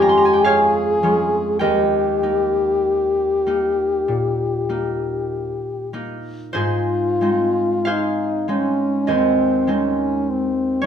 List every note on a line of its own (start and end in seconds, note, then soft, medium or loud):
0.00 1.65 F2 medium
0.00 1.02 F3 soft
0.00 1.02 G#3 soft
0.00 1.03 C#4 soft
0.00 1.65 F4 medium
0.00 0.45 G4 medium
0.00 0.44 G#4 medium
0.00 0.44 C#5 medium
0.00 0.14 A#5 medium
0.09 0.22 C6 medium
0.17 0.31 A#5 medium
0.25 0.41 G#5 medium
0.33 0.51 G5 medium
0.44 1.60 G#4 medium
0.44 1.66 G#4 medium
0.44 1.67 C#5 medium
0.44 1.66 F5 medium
1.03 1.67 F3 soft
1.03 1.67 G#3 soft
1.03 1.67 C#4 soft
1.59 5.51 D#2 soft
1.59 5.89 G4 medium
1.59 5.50 A#4 medium
1.59 5.52 D#5 medium
1.59 5.49 G5 medium
2.23 3.46 A#3 soft
2.23 3.46 D#4 soft
3.46 4.68 A#3 soft
3.46 4.69 D#4 soft
4.08 6.61 A#2 soft
4.69 5.92 A#3 soft
4.69 5.93 D#4 soft
5.93 6.61 A#3 soft
5.93 6.53 D#4 soft
6.53 10.45 G#2 medium
6.53 7.21 D#4 medium
6.53 7.92 F4 medium
6.53 7.86 G#4 medium
6.53 7.85 C5 medium
7.21 8.47 G#3 soft
7.21 8.47 C4 soft
7.21 8.48 D#4 soft
7.85 9.06 G#4 medium
7.85 9.07 C5 medium
7.85 9.91 F5 medium
7.90 8.50 D#4 medium
8.48 9.66 G#3 soft
8.48 9.66 C4 soft
8.48 9.14 C#4 medium
8.48 9.67 D#4 soft
9.07 10.86 D#2 soft
9.07 10.86 G#4 soft
9.07 10.86 C5 soft
9.07 10.86 D#5 medium
9.13 9.72 C4 medium
9.67 10.82 G#3 soft
9.67 10.82 C4 soft
9.67 10.32 C#4 medium
9.67 10.83 D#4 soft
10.30 10.86 C4 soft
10.81 10.86 G#3 soft
10.81 10.86 C#5 medium